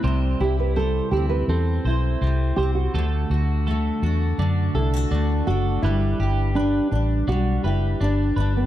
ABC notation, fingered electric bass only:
X:1
M:4/4
L:1/8
Q:1/4=83
K:G
V:1 name="Fingered electric bass" clef=bass
C,, C,,2 D,, E,, B,,, C,, C,, | D,, D,,2 E,, F,, C,, D,, F,,, | G,,, G,,,2 A,,, B,,, F,,, G,,, G,,, |]